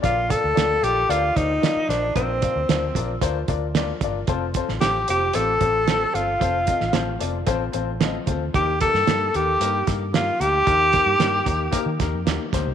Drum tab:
HH |x-x-x-x-x-x-x-x-|x-x-x-x-x-x-x-x-|x-x-x-x-x-x-x-x-|x-x-x-x-x-x-x-x-|
SD |----o-------o-o-|----o-------o---|---oo-------o---|---oo-------o---|
BD |o-o-------o-----|o-o---o-o-o---o-|o-o-------o-----|o-o-----o-----o-|

HH |x-x-x-x-x-x-x-x-|x-x-x-x-x-x-x-x-|
SD |---oo-----o-o---|----o-----o-o-o-|
BD |o-o-------o-----|o-o---o-o-o---o-|